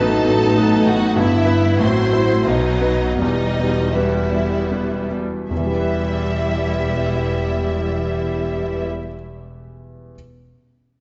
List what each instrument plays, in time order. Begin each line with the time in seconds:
Already playing: grand piano A1 A2 F#3, double bass section A1, cello section A2, viola section B3 D#4, french horn section B3 D#4
0.00 grand piano D#4 B4, violin section A4 A5
0.26 grand piano F#3
0.57 grand piano F#3 D#4 B4
0.86 grand piano A2, violin section F#4 F#5
1.16 double bass section G1, grand piano G2, cello section G2, viola section B3 E4, violin section E4 E5
1.20 french horn section E4
1.45 grand piano E4 B4
1.80 double bass section A1, grand piano A2, cello section A2, viola section F#3 E4, french horn section C4 F#4, violin section C5 C6
2.13 grand piano E4 C5
2.45 grand piano B1, double bass section B1, cello section B2, viola section F#3 B3, violin section D#4 D#5
2.49 french horn section B3
2.81 grand piano B3 B4
3.19 double bass section E1, cello section E2, grand piano E2, viola section G3 B3, violin section D#4 D#5, french horn section G4
3.60 grand piano B2
3.94 grand piano G3 B3 B4, viola section G3 B3, violin section E4 E5
4.32 grand piano G3
4.71 grand piano G3 B3 B4
5.11 grand piano B2
5.50 double bass section E1, timpani E2, grand piano E2, cello section E2, viola section G3 E4, french horn section B3 G4, violin section E5
5.57 grand piano E3
5.65 grand piano G3
5.71 grand piano B3
5.79 grand piano B4